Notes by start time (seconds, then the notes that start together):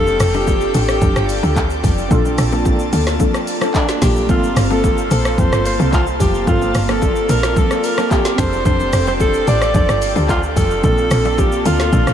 Already playing: F1 C4 D4 F4 G4 A4 D5 G5
0.07 low bongo, shaker
0.20 F1, cross-stick, open hi-hat, shaker
0.34 D4 G4 A4, low bongo, shaker
0.47 kick, high bongo, shaker
0.61 shaker
0.74 A1 D4 G4 A4, open hi-hat, low bongo, shaker
0.89 cross-stick, shaker
1.01 F1 D4 G4 A4, kick, low conga, shaker
1.16 G1, cross-stick, high bongo, shaker
1.29 open hi-hat, shaker
1.43 D2 D4 G4 A4, low bongo, shaker
1.56 kick, clap, high bongo, shaker
1.70 shaker
1.83 F1, kick, open hi-hat, high bongo, low conga, shaker
1.98 shaker
2.08 A#1 A#3 C4 D4 A4 A5, kick, low conga, shaker
2.12 F4 A4
2.25 low bongo, shaker
2.38 A#1, cross-stick, open hi-hat, shaker
2.52 A#3 D4 A4, low bongo, shaker
2.65 kick, high bongo, shaker
2.79 shaker
2.93 D2 A#3 D4 A4, open hi-hat, low bongo, shaker
3.07 cross-stick, snare, shaker
3.20 A#3 D4 A4, kick, low conga, shaker
3.34 cross-stick, high bongo, shaker
3.47 open hi-hat, shaker
3.61 A#3 D4 A4, cross-stick, low bongo, shaker
3.74 D4, kick, clap, high bongo, shaker
3.88 snare, shaker
4.02 A#1 A#3 D4 G4 A4, kick, snare, open hi-hat, high bongo, low conga, shaker
4.16 shaker
4.27 G1 A3 A#3 C4 F4 A4 C5 A5, kick, low conga, shaker
4.31 A#3 F4 A4
4.43 low bongo, shaker
4.56 G1, cross-stick, open hi-hat, shaker
4.70 A#3 C4 F4 A4, low bongo, shaker
4.84 kick, high bongo, shaker
4.98 shaker
5.11 A#1 A#3 C4 F4 A4, open hi-hat, low bongo, shaker
5.25 cross-stick, shaker
5.38 F1 A#3 C4 F4 A4 C5, kick, low conga, shaker
5.52 G1, cross-stick, high bongo, shaker
5.65 C5, open hi-hat, shaker
5.79 C2 A#3 C4 F4 A4, low bongo, shaker
5.93 F4, kick, clap, high bongo, shaker
6.07 shaker
6.20 F1 G4, kick, open hi-hat, high bongo, low conga, shaker
6.34 shaker
6.45 G1 A#3 C4 F4 A4 D5, kick, low conga, shaker
6.49 F4 A4
6.62 low bongo, shaker
6.75 G1, cross-stick, open hi-hat, shaker
6.88 A#3 C4 F4 A4, cross-stick, low bongo, shaker
7.02 kick, high bongo, shaker
7.16 shaker
7.29 A#1 A#3 C4 F4 A4 A#4, open hi-hat, low bongo, shaker
7.43 cross-stick, snare, shaker
7.56 A#3 C4 F4 A4, kick, low conga, shaker
7.71 cross-stick, high bongo, shaker
7.84 A#4, open hi-hat, shaker
7.98 A#3 C4 F4 A4, cross-stick, low bongo, shaker
8.11 G4, kick, clap, high bongo, shaker
8.25 snare, shaker
8.36 F1 C4 D4 G4 A4 C5 G5, kick, snare, open hi-hat, high bongo, low conga, shaker
8.40 G4 G#4
8.49 A4
8.53 shaker
8.65 F1 D4 G4 A4 C5, kick, low conga, shaker
8.80 low bongo, shaker
8.93 F1, cross-stick, open hi-hat, shaker
9.07 D4 G4 A4 C5, low bongo, shaker
9.20 A4, kick, high bongo, shaker
9.34 shaker
9.47 A1 D4 G4 A4 D5, open hi-hat, low bongo, shaker
9.62 cross-stick, shaker
9.74 F1 D4 G4 A4 D5, kick, low conga, shaker
9.89 G1, cross-stick, high bongo, shaker
10.02 open hi-hat, shaker
10.16 D2 D4 G4 A4, low bongo, shaker
10.29 F4, kick, clap, high bongo, shaker
10.43 shaker
10.56 F1 A4, kick, open hi-hat, high bongo, low conga, shaker
10.71 shaker
10.81 A#1 A#3 C4 D4 F4 A4 D5 A5, kick, low conga, shaker
10.85 F4 A4
10.98 low bongo, shaker
11.11 A#1, cross-stick, open hi-hat, shaker
11.25 A#3 D4 A4, low bongo, shaker
11.38 G4, kick, high bongo, shaker
11.52 shaker
11.65 D2 A#3 D4 F4 A4, open hi-hat, low bongo, shaker
11.80 cross-stick, snare, shaker
11.92 A#1 A#3 D4 A4, kick, low conga, shaker
12.07 A1, cross-stick, high bongo, shaker